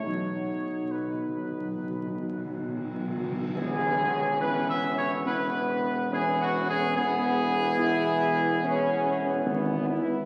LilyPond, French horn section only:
\new Staff \with { instrumentName = "French horn section" } { \time 4/4 \key e \major \tempo 4 = 70 dis'2.~ dis'8 r8 | cis'2 b4 cis'4 | b4 e'4 cis'4 b8 e'8 | }